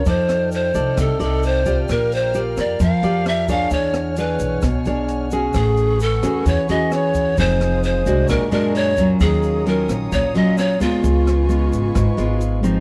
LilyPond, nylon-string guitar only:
\new Staff \with { instrumentName = "Nylon-string guitar" } { \time 4/4 \key ais \phrygian \tempo 4 = 131 << { <ees' a' d''>4. <ees' a' d''>4 <ees' a' d''>4 <f' g' d''>8~ | <f' g' d''>4 <eis' g' d''>4 r8 <eis' g' d''>4 <d' gis' cis''>8~ | <d' gis' cis''>4 <d' gis' cis''>4 r8 <d' gis' cis''>4 <cis' fis' gis'>8~ | <cis' fis' gis'>4 r8 <cis' fis' gis'>4 <cis' fis' gis'>4. |
<c' ees' aes'>4. <aes d' fis'>4 <gis d' fis'>4 <fis cis' eis'>8~ | <fis cis' eis'>4 <fis cis' eis'>4. <fis cis' eis'>4 <gis b eis'>8~ | <gis b eis'>4 <gis b eis'>4 r8 <gis b eis'>4 <eis bis dis'>8 | } \\ { f2 c2 | ais2 eis2 | e2 b,2 | a2 e2 |
f2 ais,2 | dis2 ais,2 | cis2 gis,2 | } >> }